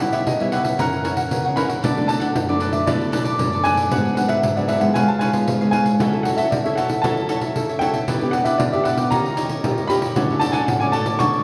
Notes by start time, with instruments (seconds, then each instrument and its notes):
Already playing: nylon-string guitar C#3 G3 B3 E4
0.00 cavaquinho G4 B4 C#5 E5, grand piano F#5, pandeiro
0.12 cavaquinho G4 B4 C#5 E5, grand piano E5, pandeiro
0.27 nylon-string guitar C#3, grand piano D#5, pandeiro
0.40 nylon-string guitar G3 B3 E4, cavaquinho B4 C#5 E5, grand piano E5, pandeiro
0.52 cavaquinho G4 B4 C#5 E5, grand piano F#5, pandeiro
0.64 cavaquinho B4 C#5 E5, pandeiro
0.79 nylon-string guitar F#2 E3 A#3 C#4, cavaquinho E4 A#4 C#5 F#5, grand piano A#5, pandeiro
0.93 pandeiro
1.04 cavaquinho E4 A#4 C#5 F#5, pandeiro
1.17 cavaquinho A#4 C#5 F#5, pandeiro
1.31 nylon-string guitar C#3 E3 A#3 C#4, pandeiro
1.45 cavaquinho A#4 C#5 F#5, pandeiro
1.56 nylon-string guitar E3 A#3 C#4, cavaquinho E4 A#4 C#5 F#5, grand piano B5, pandeiro
1.68 cavaquinho A#4 C#5 F#5, pandeiro
1.83 nylon-string guitar B2 F#3 A3 D4, cavaquinho D4 A4 B4 D5, pandeiro
1.97 nylon-string guitar F#3 A3 D4, pandeiro
2.08 cavaquinho D4 A4 B4 D5, grand piano A5, pandeiro
2.20 cavaquinho D4 A4 B4 D5, grand piano F#5, pandeiro
2.35 nylon-string guitar F#2, pandeiro
2.48 nylon-string guitar F#3 A3 D4, cavaquinho A4 B4 D5, pandeiro
2.60 cavaquinho D4 A4 B4 D5, pandeiro
2.72 cavaquinho A4 B4 D5, grand piano E5, pandeiro
2.86 nylon-string guitar B2 F#3 A3 D4, cavaquinho D4 A4 B4 D5, grand piano D5, pandeiro
3.01 pandeiro
3.12 cavaquinho D4 A4 B4 D5, pandeiro
3.24 cavaquinho A4 B4 D5, pandeiro
3.39 nylon-string guitar F#2 F#3 A3 D4, pandeiro
3.52 cavaquinho A4 B4 D5, pandeiro
3.64 nylon-string guitar F#3 A3 D4, cavaquinho D4 A4 B4 D5, grand piano G#5, pandeiro
3.76 cavaquinho A4 B4 D5, pandeiro
3.91 nylon-string guitar G#2 F#3 B3 D4, cavaquinho D4 G#4 B4 F#5, pandeiro
4.05 pandeiro
4.15 nylon-string guitar F#3 B3 D4, cavaquinho D4 G#4 B4 F#5, grand piano F#5, pandeiro
4.28 cavaquinho D4 G#4 B4 F#5, grand piano E5, pandeiro
4.43 nylon-string guitar G#2, pandeiro
4.56 nylon-string guitar F#3 B3 D4, cavaquinho G#4 B4 F#5, grand piano D5, pandeiro
4.68 cavaquinho D4 G#4 B4 F#5, grand piano E5, pandeiro
4.80 nylon-string guitar G#3 B3 F4, cavaquinho G#4 B4 F#5, grand piano F#5, pandeiro
4.94 nylon-string guitar C#3, cavaquinho F4 B4 C#5 F5, grand piano G#5, pandeiro
5.08 grand piano A5, pandeiro
5.19 cavaquinho F4 B4 C#5 F5, grand piano G#5, pandeiro
5.33 nylon-string guitar G#3 B3 F4, cavaquinho B4 C#5 F5, pandeiro
5.47 nylon-string guitar G#2, pandeiro
5.61 nylon-string guitar G#3 B3 F4, cavaquinho B4 C#5 F5, pandeiro
5.71 cavaquinho F4 B4 C#5 F5, grand piano G#5, pandeiro
5.85 cavaquinho B4 C#5 F5, pandeiro
5.99 nylon-string guitar F#3 C#4 E4 A4, cavaquinho F#4 A4 C#5 E5, pandeiro
6.12 nylon-string guitar C#4 E4 A4, pandeiro
6.23 cavaquinho F#4 A4 C#5 E5, grand piano F#5, pandeiro
6.36 cavaquinho F#4 A4 C#5 E5, grand piano E5, pandeiro
6.51 nylon-string guitar C#3, grand piano D5, pandeiro
6.64 nylon-string guitar C#4 E4 A4, cavaquinho A4 C#5 E5, grand piano E5, pandeiro
6.75 cavaquinho F#4 A4 C#5 E5, grand piano F#5, pandeiro
6.89 cavaquinho A4 C#5 E5, pandeiro
7.02 nylon-string guitar F#3 C#4 E4 A4, cavaquinho F#4 A4 C#5 E5, grand piano A5, pandeiro
7.17 pandeiro
7.29 cavaquinho F#4 A4 C#5 E5, pandeiro
7.41 cavaquinho A4 C#5 E5, pandeiro
7.56 nylon-string guitar C#3 C#4 E4 A4, pandeiro
7.69 cavaquinho A4 C#5 E5, pandeiro
7.79 nylon-string guitar C#4 E4 A4, cavaquinho F#4 A4 C#5 E5, grand piano G5, pandeiro
7.93 cavaquinho A4 C#5 E5, pandeiro
8.08 nylon-string guitar E3 B3 D4 G4, cavaquinho E4 G4 B4 D5, pandeiro
8.21 nylon-string guitar B3 D4 G4, pandeiro
8.31 cavaquinho E4 G4 B4 D5, grand piano F#5, pandeiro
8.44 cavaquinho E4 G4 B4 D5, grand piano E5, pandeiro
8.58 nylon-string guitar B2, grand piano D5, pandeiro
8.72 nylon-string guitar B3 D4 G4, cavaquinho G4 B4 D5, grand piano E5, pandeiro
8.84 cavaquinho E4 G4 B4 D5, grand piano F#5, pandeiro
8.97 cavaquinho G4 B4 D5, pandeiro
9.11 nylon-string guitar D#3 C#4 F4 G4, cavaquinho D#4 G4 C#5 D#5, grand piano A#5, pandeiro
9.26 pandeiro
9.37 cavaquinho D#4 G4 C#5 D#5, pandeiro
9.49 cavaquinho G4 C#5 D#5, pandeiro
9.64 nylon-string guitar A#2 C#4 F4 G4, pandeiro
9.77 cavaquinho G4 C#5 D#5, pandeiro
9.88 nylon-string guitar C#4 F4 G4, cavaquinho D#4 G4 C#5 D#5, grand piano B5, pandeiro
10.02 cavaquinho G4 C#5 D#5, pandeiro
10.16 nylon-string guitar D3 F#3 A3 C#4, cavaquinho F#4 A4 C#5 D5, pandeiro
10.29 nylon-string guitar F#3 A3 C#4, pandeiro
10.40 cavaquinho F#4 A4 C#5 D5, grand piano A5, pandeiro
10.52 cavaquinho F#4 A4 C#5 D5, grand piano G#5, pandeiro
10.66 nylon-string guitar A2, grand piano F#5, pandeiro
10.80 nylon-string guitar F#3 A3 C#4, cavaquinho A4 C#5 D5, grand piano G#5, pandeiro
10.92 cavaquinho F#4 A4 C#5 D5, grand piano A5, pandeiro
11.06 cavaquinho A4 C#5 D5, pandeiro
11.19 nylon-string guitar D3 F#3 A3 C#4, cavaquinho F#4 A4 C#5 D5, grand piano C#6, pandeiro
11.34 pandeiro